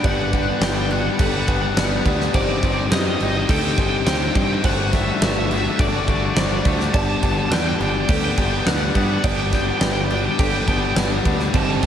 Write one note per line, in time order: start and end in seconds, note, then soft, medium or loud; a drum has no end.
0.00 0.61 G3 medium
0.00 0.32 G3 medium
0.00 1.19 B3 medium
0.00 1.19 G4 medium
0.00 4.61 G4 medium
0.00 2.31 B4 medium
0.00 1.09 D5 medium
0.00 2.30 D5 medium
0.00 2.31 B5 medium
0.04 0.50 G1 medium
0.04 1.48 G2 medium
0.04 0.33 B3 medium
0.04 0.34 D4 loud
0.04 0.35 G4 loud
0.04 0.62 D5 loud
0.04 0.11 F#5 loud
0.04 kick loud
0.04 crash medium
0.12 0.19 F#5 medium
0.20 0.25 F#5 medium
0.26 0.33 F#5 medium
0.32 1.77 D3 medium
0.32 0.60 G3 medium
0.32 0.49 B3 medium
0.32 0.47 D4 medium
0.32 0.46 G4 loud
0.32 0.41 F#5 medium
0.32 kick medium
0.32 crash medium
0.41 0.48 F#5 medium
0.47 0.60 B3 medium
0.47 0.61 D4 medium
0.47 0.64 G4 medium
0.47 0.56 F#5 medium
0.56 0.89 G3 loud
0.56 0.63 F#5 medium
0.61 1.07 G1 loud
0.61 0.89 B3 loud
0.61 0.91 D4 loud
0.61 0.92 G4 loud
0.61 1.19 B4 medium
0.61 0.91 G5 loud
0.61 snare loud
0.61 crash medium
0.89 1.33 G3 medium
0.89 1.07 B3 medium
0.89 1.05 D4 medium
0.89 1.03 G4 medium
0.89 0.99 F#5 medium
0.89 crash medium
1.00 1.07 F#5 medium
1.04 1.35 B3 medium
1.04 1.33 D4 medium
1.04 1.32 G4 medium
1.04 1.14 F#5 medium
1.15 1.23 F#5 medium
1.19 1.42 G1 medium
1.19 2.34 G4 medium
1.19 1.77 A4 medium
1.19 kick loud
1.19 crash medium
1.23 1.30 F#5 medium
1.31 1.48 D4 medium
1.31 1.49 G4 medium
1.31 1.39 F#5 medium
1.36 1.47 B3 medium
1.36 1.46 F#5 medium
1.47 1.71 G1 medium
1.47 1.74 G3 medium
1.47 1.75 B3 medium
1.47 1.76 D4 medium
1.47 1.77 G4 medium
1.47 1.54 F#5 medium
1.47 kick loud
1.47 crash medium
1.55 1.62 F#5 medium
1.62 1.69 F#5 medium
1.70 1.78 F#5 medium
1.75 1.99 G1 medium
1.75 2.02 G3 medium
1.75 1.92 B3 loud
1.75 1.91 D4 loud
1.75 1.88 G4 loud
1.75 2.34 B4 medium
1.75 1.86 F#5 medium
1.75 snare loud
1.75 crash medium
1.86 2.06 G4 medium
1.86 1.93 F#5 medium
1.92 2.03 B3 medium
1.92 2.05 D4 medium
1.92 2.02 F#5 soft
2.03 2.28 D2 medium
2.03 2.31 G3 medium
2.03 2.21 B3 medium
2.03 2.20 D4 medium
2.03 2.18 G4 medium
2.03 kick loud
2.03 crash medium
2.19 2.34 B3 medium
2.19 2.33 D4 medium
2.19 2.32 G4 medium
2.19 snare soft
2.33 2.57 G1 loud
2.33 2.60 G3 medium
2.33 2.61 C4 medium
2.33 4.62 D#4 medium
2.33 2.62 D#4 medium
2.33 2.63 G4 loud
2.33 2.92 C5 loud
2.33 2.42 D5 medium
2.33 4.62 G5 medium
2.33 4.62 A5 medium
2.33 kick loud
2.33 crash medium
2.42 2.49 D5 medium
2.49 2.57 D5 medium
2.57 2.89 G3 medium
2.57 2.64 D5 medium
2.62 2.86 G1 medium
2.62 2.78 C4 medium
2.62 2.77 D#4 medium
2.62 2.75 G4 loud
2.62 2.72 D5 medium
2.62 kick medium
2.62 crash medium
2.72 2.93 G4 medium
2.72 2.79 D5 medium
2.78 2.90 C4 medium
2.78 2.92 D#4 medium
2.78 2.86 D5 medium
2.87 3.17 G3 loud
2.87 2.91 D5 medium
2.91 3.14 F#2 loud
2.91 3.19 C4 loud
2.91 3.20 D#4 loud
2.91 3.21 G4 loud
2.91 3.49 B4 medium
2.91 2.99 D#5 medium
2.91 snare loud
2.91 crash loud
2.99 3.07 D#5 medium
3.07 3.14 D#5 medium
3.14 3.21 D#5 medium
3.19 3.43 G1 medium
3.19 3.63 G3 medium
3.19 3.36 C4 medium
3.19 3.34 D#4 medium
3.19 3.32 G4 medium
3.19 3.29 D#5 medium
3.19 crash medium
3.29 3.37 D#5 medium
3.34 3.64 C4 medium
3.34 3.63 D#4 medium
3.34 3.61 G4 medium
3.34 3.45 D#5 medium
3.48 3.72 D2 medium
3.48 4.06 A4 medium
3.48 4.65 A4 medium
3.48 3.58 G5 loud
3.48 kick loud
3.48 crash loud
3.58 3.65 G5 medium
3.62 3.77 C4 medium
3.62 3.78 D#4 medium
3.62 3.79 G4 medium
3.62 3.74 G5 loud
3.74 4.01 G1 medium
3.74 4.04 G3 medium
3.74 4.06 C4 medium
3.74 3.82 G5 medium
3.74 kick loud
3.74 crash medium
3.79 4.06 D#4 medium
3.79 4.07 G4 medium
3.79 3.89 G5 loud
3.89 3.96 G5 medium
3.97 4.04 G5 loud
4.05 4.29 D2 medium
4.05 4.33 G3 medium
4.05 4.22 C4 loud
4.05 4.20 D#4 loud
4.05 4.18 G4 loud
4.05 4.62 C5 medium
4.05 4.13 G5 medium
4.05 snare loud
4.05 crash medium
4.15 4.20 G5 medium
4.20 4.35 C4 medium
4.20 4.35 D#4 medium
4.20 4.36 G4 medium
4.20 4.28 G5 medium
4.28 4.36 G5 loud
4.34 4.58 G2 medium
4.34 4.62 G3 medium
4.34 4.51 C4 medium
4.34 4.50 D#4 medium
4.34 4.47 G4 medium
4.34 4.44 G5 medium
4.34 kick loud
4.34 crash medium
4.44 4.52 G5 medium
4.49 4.64 C4 medium
4.49 4.63 D#4 medium
4.49 4.62 G4 medium
4.53 4.61 G5 medium
4.64 5.10 G1 loud
4.64 4.91 G3 medium
4.64 4.92 A3 medium
4.64 4.94 D4 medium
4.64 6.92 F#4 medium
4.64 4.94 F#4 loud
4.64 5.21 C5 loud
4.64 11.50 D5 medium
4.64 4.92 F#5 loud
4.64 6.92 A5 medium
4.64 11.50 D6 medium
4.64 kick loud
4.64 crash medium
4.92 5.20 G3 loud
4.92 5.09 A3 medium
4.92 5.08 D4 loud
4.92 5.05 F#4 medium
4.92 5.00 E5 loud
4.92 kick medium
4.92 snare soft
4.92 crash medium
5.01 5.08 E5 medium
5.06 5.21 A3 medium
5.06 5.23 D4 medium
5.06 5.23 F#4 medium
5.06 5.16 E5 medium
5.16 5.24 E5 medium
5.21 5.67 G1 loud
5.21 5.48 G3 medium
5.21 5.50 A3 loud
5.21 5.51 D4 loud
5.21 5.51 F#4 loud
5.21 5.79 B4 medium
5.21 snare loud
5.21 crash medium
5.25 5.31 E5 medium
5.32 5.38 E5 medium
5.39 5.46 E5 medium
5.46 5.93 G3 medium
5.46 5.53 E5 medium
5.51 5.66 A3 medium
5.51 5.65 D4 medium
5.51 5.62 F#4 medium
5.51 5.61 E5 medium
5.51 crash medium
5.61 5.94 D4 medium
5.61 5.91 F#4 medium
5.61 5.69 E5 medium
5.67 5.94 A3 medium
5.67 5.77 E5 medium
5.79 6.02 G1 medium
5.79 6.94 F#4 medium
5.79 6.37 A4 medium
5.79 5.88 D5 medium
5.79 kick loud
5.79 crash medium
5.89 6.08 F#4 medium
5.89 5.94 D5 medium
5.94 6.06 A3 medium
5.94 6.08 D4 medium
5.94 6.02 D5 medium
6.03 6.33 G3 medium
6.03 6.09 D5 medium
6.07 6.31 G1 medium
6.07 6.35 A3 medium
6.07 6.37 D4 medium
6.07 6.37 F#4 medium
6.07 6.17 D5 medium
6.07 kick medium
6.07 crash medium
6.17 6.24 D5 medium
6.25 6.31 D5 medium
6.32 6.63 G3 loud
6.32 6.39 D5 medium
6.36 6.59 G1 medium
6.36 6.52 A3 loud
6.36 6.52 D4 loud
6.36 6.49 F#4 loud
6.36 6.94 C5 medium
6.36 6.47 D5 medium
6.36 snare loud
6.36 crash medium
6.47 6.66 F#4 medium
6.47 6.54 D5 medium
6.52 6.64 A3 medium
6.52 6.66 D4 medium
6.52 6.62 D5 medium
6.64 6.88 D2 loud
6.64 6.92 G3 medium
6.64 6.81 A3 medium
6.64 6.80 D4 medium
6.64 6.77 F#4 medium
6.64 kick loud
6.64 crash medium
6.79 6.94 A3 medium
6.79 6.95 D4 medium
6.79 6.92 F#4 medium
6.79 snare soft
6.93 7.17 G1 loud
6.93 9.24 G2 medium
6.93 7.22 G3 loud
6.93 7.23 B3 loud
6.93 7.24 D4 loud
6.93 11.50 G4 medium
6.93 7.25 G4 loud
6.93 7.52 D5 loud
6.93 7.01 A5 loud
6.93 11.50 B5 medium
6.93 kick loud
6.93 crash medium
7.01 7.08 A5 medium
7.09 7.15 A5 loud
7.15 7.23 A5 medium
7.22 7.46 G1 loud
7.22 8.67 D3 medium
7.22 7.50 G3 medium
7.22 7.39 B3 medium
7.22 7.38 D4 medium
7.22 7.36 G4 medium
7.22 7.31 A5 loud
7.22 kick medium
7.22 crash medium
7.31 7.38 A5 medium
7.36 7.51 B3 medium
7.36 7.52 D4 medium
7.36 7.53 G4 medium
7.36 7.45 A5 loud
7.46 7.52 A5 medium
7.50 7.74 E2 medium
7.50 7.78 G3 loud
7.50 7.80 B3 loud
7.50 7.81 D4 loud
7.50 7.82 G4 loud
7.50 8.09 B4 medium
7.50 7.60 G5 loud
7.50 snare loud
7.50 crash medium
7.60 7.68 G5 medium
7.68 7.75 G5 loud
7.76 8.37 G3 medium
7.76 7.83 G5 medium
7.80 8.03 G1 loud
7.80 7.96 B3 medium
7.80 7.94 D4 medium
7.80 7.94 G4 medium
7.80 7.89 G5 loud
7.80 crash medium
7.90 7.97 G5 medium
7.94 8.25 B3 medium
7.94 8.23 D4 medium
7.94 8.22 G4 medium
7.98 8.06 G5 medium
8.08 8.32 D2 medium
8.08 10.39 G4 medium
8.08 8.67 A4 medium
8.08 8.16 G5 loud
8.08 kick loud
8.08 crash loud
8.16 8.24 G5 medium
8.23 8.37 B3 medium
8.23 8.39 D4 medium
8.23 8.41 G4 medium
8.23 8.31 G5 medium
8.32 8.38 G5 medium
8.37 8.61 G1 loud
8.37 8.65 G3 medium
8.37 8.65 B3 medium
8.37 8.66 D4 medium
8.37 8.68 G4 loud
8.37 8.46 G5 medium
8.37 kick loud
8.37 crash medium
8.46 8.53 G5 medium
8.54 8.61 G5 medium
8.62 8.89 D2 medium
8.62 8.94 G3 loud
8.62 8.67 G5 medium
8.66 8.82 B3 loud
8.66 8.80 D4 loud
8.66 8.79 G4 medium
8.66 9.24 B4 loud
8.66 8.74 F#5 medium
8.66 snare loud
8.66 crash medium
8.75 8.81 F#5 medium
8.79 8.94 B3 medium
8.79 8.95 D4 medium
8.79 8.97 G4 medium
8.79 8.88 F#5 medium
8.89 8.95 F#5 medium
8.94 9.18 G2 medium
8.94 9.23 G3 medium
8.94 9.11 B3 medium
8.94 9.10 D4 medium
8.94 9.08 G4 medium
8.94 9.03 F#5 medium
8.94 kick medium
8.94 crash medium
9.04 9.11 F#5 medium
9.09 9.23 B3 medium
9.09 9.24 D4 medium
9.09 9.26 G4 medium
9.09 9.18 F#5 medium
9.19 9.24 F#5 medium
9.23 9.70 G1 loud
9.23 10.68 G2 medium
9.23 9.51 G3 loud
9.23 9.52 B3 loud
9.23 9.53 D4 loud
9.23 9.55 G4 loud
9.23 9.82 D5 loud
9.23 9.32 G5 medium
9.23 kick loud
9.23 crash loud
9.32 9.39 G5 medium
9.40 9.47 G5 medium
9.47 9.54 G5 medium
9.52 10.96 D3 medium
9.52 9.80 G3 medium
9.52 9.68 B3 loud
9.52 9.67 D4 medium
9.52 9.66 G4 medium
9.52 9.61 G5 medium
9.52 kick medium
9.52 snare soft
9.52 crash medium
9.61 9.69 G5 medium
9.66 9.80 B3 medium
9.66 9.81 D4 medium
9.66 9.83 G4 medium
9.66 9.77 G5 medium
9.78 10.27 G1 loud
9.78 10.08 G3 loud
9.78 10.08 B3 loud
9.78 10.39 B4 medium
9.78 9.85 G5 medium
9.78 snare loud
9.78 crash medium
9.83 10.10 D4 loud
9.83 10.12 G4 loud
9.83 9.93 G5 medium
9.93 10.01 G5 medium
10.01 10.08 G5 medium
10.08 10.53 G3 medium
10.08 10.25 B3 medium
10.08 10.24 D4 medium
10.08 10.22 G4 medium
10.08 10.16 G5 medium
10.08 crash medium
10.17 10.24 G5 medium
10.23 10.54 B3 medium
10.23 10.53 D4 medium
10.23 10.51 G4 medium
10.23 10.31 G5 medium
10.31 10.39 G5 medium
10.39 10.62 G1 medium
10.39 11.54 G4 medium
10.39 10.97 A4 medium
10.39 10.47 G5 medium
10.39 kick loud
10.39 crash loud
10.47 10.54 G5 medium
10.52 10.67 B3 medium
10.52 10.68 D4 medium
10.52 10.69 G4 medium
10.52 10.62 G5 medium
10.62 10.70 G5 medium
10.66 10.91 G1 loud
10.66 10.94 G3 medium
10.66 10.95 B3 medium
10.66 10.96 D4 medium
10.66 10.97 G4 loud
10.66 10.78 G5 medium
10.66 kick medium
10.66 crash medium
10.78 10.84 G5 medium
10.84 10.92 G5 medium
10.95 11.19 G1 medium
10.95 11.22 G3 medium
10.95 11.12 B3 loud
10.95 11.10 D4 loud
10.95 11.08 G4 loud
10.95 11.54 B4 medium
10.95 snare loud
10.95 crash medium
11.10 11.23 B3 medium
11.10 11.25 D4 medium
11.10 11.26 G4 medium
11.23 11.48 D2 medium
11.23 11.50 G3 medium
11.23 11.40 B3 medium
11.23 11.38 D4 medium
11.23 11.37 G4 medium
11.23 kick medium
11.23 crash medium
11.38 11.52 B3 medium
11.38 11.52 D4 medium
11.38 11.51 G4 medium
11.38 snare soft
11.51 11.77 G1 medium
11.51 11.79 G3 medium
11.51 11.80 C4 loud
11.51 11.86 C4 medium
11.51 11.81 D#4 medium
11.51 11.86 G4 medium
11.51 11.82 G4 loud
11.51 11.86 C5 loud
11.51 11.86 D#6 loud
11.51 kick loud
11.51 crash medium
11.55 11.86 G3 medium
11.55 11.63 A5 loud
11.63 11.70 A5 medium
11.70 11.78 A5 medium
11.78 11.86 G3 medium
11.78 11.86 C4 medium
11.78 11.84 A5 medium
11.83 11.86 G1 medium
11.83 11.86 D#4 medium
11.83 kick medium
11.83 snare soft
11.83 crash medium